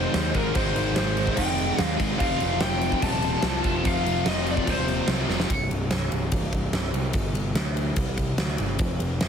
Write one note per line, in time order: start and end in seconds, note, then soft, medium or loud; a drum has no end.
0.00 0.33 G#2 loud
0.00 0.52 G#2 medium
0.00 0.34 D#3 loud
0.00 0.53 D#3 medium
0.00 0.34 G#3 loud
0.00 0.55 G#3 medium
0.00 0.35 C4 loud
0.00 0.34 D#4 loud
0.00 0.33 G#4 loud
0.00 0.36 C5 loud
0.14 0.31 D#2 medium
0.14 snare loud
0.14 crash medium
0.34 0.51 G#1 medium
0.34 0.53 G#2 medium
0.34 0.54 D#3 medium
0.34 0.55 G#3 medium
0.34 0.56 C4 medium
0.34 0.54 D#4 medium
0.34 0.54 G#4 medium
0.34 0.55 A#4 medium
0.34 kick medium
0.34 crash medium
0.53 0.72 G#1 loud
0.53 1.35 G#2 loud
0.53 1.98 G#2 loud
0.53 1.36 D#3 loud
0.53 1.98 D#3 loud
0.53 1.99 G#3 loud
0.53 1.37 G#3 loud
0.53 2.00 C4 loud
0.53 1.99 D#4 loud
0.53 1.98 G#4 loud
0.53 0.95 C5 loud
0.53 kick loud
0.53 crash medium
0.76 0.92 G#1 medium
0.76 crash medium
0.96 1.29 G#1 loud
0.96 1.39 C5 loud
0.96 snare loud
0.96 crash medium
1.17 crash medium
1.27 kick medium
1.36 1.70 F1 loud
1.36 2.17 G#2 medium
1.36 2.19 D#3 medium
1.36 2.20 G#3 medium
1.36 1.82 G5 loud
1.36 kick loud
1.36 crash loud
1.58 crash medium
1.78 1.96 D#2 loud
1.78 1.95 F5 loud
1.78 snare loud
1.78 crash medium
1.99 2.21 G#1 medium
1.99 2.19 G#2 medium
1.99 2.20 D#3 medium
1.99 2.20 G#3 medium
1.99 2.21 C4 medium
1.99 2.19 D#4 medium
1.99 2.19 G#4 medium
1.99 kick medium
1.99 crash medium
2.18 2.37 F1 loud
2.18 3.00 F2 loud
2.18 3.63 F2 loud
2.18 3.63 C3 loud
2.18 3.02 C3 loud
2.18 3.63 F3 loud
2.18 2.61 F5 loud
2.18 kick loud
2.18 crash medium
2.22 3.05 F3 loud
2.22 3.63 A3 loud
2.22 3.63 C4 loud
2.22 3.61 F4 loud
2.40 2.57 F1 medium
2.40 crash medium
2.60 2.94 F1 loud
2.60 3.03 G5 loud
2.60 snare loud
2.60 crash medium
2.81 crash medium
2.92 kick medium
3.01 3.35 D#1 loud
3.01 3.82 F2 medium
3.01 3.84 C3 medium
3.01 3.88 A5 loud
3.01 kick loud
3.01 crash loud
3.05 3.85 F3 medium
3.22 crash medium
3.42 3.60 C2 medium
3.42 snare loud
3.42 crash medium
3.62 3.81 F1 medium
3.62 3.83 F2 medium
3.62 3.84 C3 medium
3.62 3.84 F3 medium
3.62 3.83 A3 medium
3.62 3.86 C4 medium
3.62 3.83 F4 medium
3.62 kick medium
3.62 crash medium
3.83 4.02 F1 medium
3.83 4.64 F2 loud
3.83 5.28 F2 loud
3.83 5.28 C3 loud
3.83 4.66 C3 loud
3.83 5.28 F3 loud
3.83 4.67 F3 loud
3.83 5.28 A3 loud
3.83 5.28 C4 loud
3.83 5.27 F4 loud
3.83 kick loud
3.83 crash medium
3.88 4.28 F5 loud
4.05 4.21 F1 loud
4.05 crash medium
4.26 4.59 F1 loud
4.26 4.48 D#5 loud
4.26 snare loud
4.26 crash medium
4.47 crash medium
4.51 4.70 D5 medium
4.57 kick medium
4.65 5.00 D#1 medium
4.65 5.48 F2 medium
4.65 5.48 C3 medium
4.65 5.49 F3 medium
4.65 kick loud
4.65 crash medium
4.70 5.07 C5 medium
4.88 crash medium
5.08 5.25 C2 medium
5.08 snare loud
5.08 crash medium
5.28 5.45 F1 medium
5.28 5.50 F2 medium
5.28 5.49 C3 medium
5.28 5.49 F3 medium
5.28 5.49 A3 medium
5.28 5.48 C4 medium
5.28 5.48 F4 medium
5.28 snare medium
5.40 snare loud
5.49 5.67 C1 medium
5.49 kick loud
5.49 ride loud
5.70 5.88 C1 medium
5.70 ride medium
5.91 6.08 C1 medium
5.91 snare medium
5.91 ride medium
6.11 6.29 C1 medium
6.11 ride medium
6.32 6.67 C1 medium
6.32 kick medium
6.32 ride medium
6.53 kick medium
6.53 ride medium
6.73 6.90 C1 medium
6.73 snare medium
6.73 ride medium
6.84 snare soft
6.93 7.11 C2 medium
6.93 ride medium
7.13 7.32 G1 medium
7.13 kick medium
7.13 ride medium
7.34 7.52 G1 medium
7.34 ride medium
7.55 7.90 D2 medium
7.55 snare medium
7.55 ride medium
7.77 ride medium
7.96 8.32 C2 medium
7.96 kick medium
7.96 ride medium
8.18 kick medium
8.18 ride medium
8.38 8.56 D2 medium
8.38 snare medium
8.38 ride medium
8.48 snare soft
8.58 8.77 G1 medium
8.58 ride medium
8.79 8.97 F1 medium
8.79 kick loud
8.79 ride medium
9.00 9.18 F1 medium
9.00 ride medium
9.21 9.28 F1 medium
9.21 snare medium
9.21 ride medium